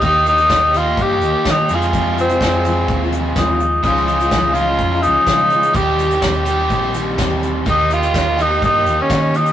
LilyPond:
<<
  \new Staff \with { instrumentName = "Tenor saxophone" } { \time 4/4 \key f \minor \tempo 4 = 126 ees'8 ees'4 f'8 g'4 ees'8 f'8~ | f'8 c'2 r8 ees'4 | ees'8 ees'4 f'4 ees'4. | g'4 g'2 r4 |
ees'8 f'4 ees'8 ees'8. des'8. ees'8 | }
  \new Staff \with { instrumentName = "Steel-string acoustic guitar" } { \time 4/4 \key f \minor <ees bes ees' g'>8 <ees bes ees'>16 <bes ees' g'>16 <ees bes ees' g'>16 <bes ees' g'>16 <ees bes ees' g'>16 <bes ees' g'>8 <bes ees' g'>16 <ees bes ees' g'>8 <ees bes ees' g'>16 <bes ees' g'>16 <f aes c' f'>8 | <f, c f aes c' f'>8 <f aes c' f'>16 <f aes c' f'>16 <f, c f aes c' f'>16 <f aes c' f'>16 <f aes c' f'>16 <f aes c' f'>8 <f aes c' f'>16 <f aes c' f'>8 <f, c f aes c' f'>16 <f aes c' f'>16 <f aes c' f'>8 | <des f aes ees' f'>8 <f aes ees' f'>16 <aes ees' f'>16 <des f aes ees' f'>16 <aes ees' f'>16 <f aes ees' f'>16 <aes ees' f'>8 <aes ees' f'>16 <f aes ees' f'>8 <des f aes ees' f'>8 <f aes f'>8 | <ees c' ees' g'>8 <ees c' ees' g'>16 <c' ees' g'>16 <ees c' ees' g'>16 <c' ees' g'>16 <ees c' ees' g'>16 <c' ees' g'>8 <c' ees' g'>16 <ees c' ees' g'>8 <ees c' ees' g'>16 <c' ees' g'>16 <ees c' ees' g'>8 |
<ees bes ees' g'>8 <ees bes ees' g'>16 <bes ees' g'>16 <ees bes ees' g'>16 <bes ees' g'>16 <ees bes ees' g'>16 <bes ees' g'>8 <bes ees' g'>16 <ees bes ees' g'>8 <ees bes ees' g'>8 <ees bes ees' g'>8 | }
  \new Staff \with { instrumentName = "Overdriven electric guitar" } { \time 4/4 \key f \minor <ees bes ees' g'>4. <ees bes ees' g'>2 <f, c f aes c' aes'>8~ | <f, c f aes c' aes'>4 <f, c f aes c' aes'>2~ <f, c f aes c' aes'>8 r8 | <des f aes des' f'>4. <des f aes des' f'>2~ <des f aes des' f'>8 | <ees g c' g'>4. <ees g c' g'>2~ <ees g c' g'>8 |
<ees bes ees' g'>4. <ees bes ees' g'>2~ <ees bes ees' g'>8 | }
  \new Staff \with { instrumentName = "Fingered electric bass" } { \clef bass \time 4/4 \key f \minor ees,4 ees,4 g,8 ees,16 r16 ees8 f,8~ | f,4 f,4 ees,4 ees,4 | des,4 des,4 f,8 des,16 r16 des4 | ees,4 ees,4 bes,,4 ees,4 |
ees,4 ees,4 g,8 ees,16 r16 ees4 | }
  \new DrumStaff \with { instrumentName = "Drums" } \drummode { \time 4/4 <hh bd>8 hh16 hh16 <hh bd sn>8 hh8 <hh bd>8 hh8 <hh bd sn>8 hh16 hh16 | <hh bd>8 hh16 hh16 <hh bd sn>8 hh8 <hh bd>8 hh8 <hh bd sn>8 hh8 | <hh bd>16 sn16 hh16 hh16 <hh bd sn>8 hh8 <hh bd>8 hh8 <hh bd sn>8 hh16 hh16 | <hh bd>8 hh16 hh16 <hh bd sn>8 hh8 <hh bd>8 hh8 <hh bd sn>8 hh8 |
<hh bd>8 hh16 hh16 <hh bd sn>8 hh8 <hh bd>8 hh8 <hh bd sn>8 hh16 hh16 | }
>>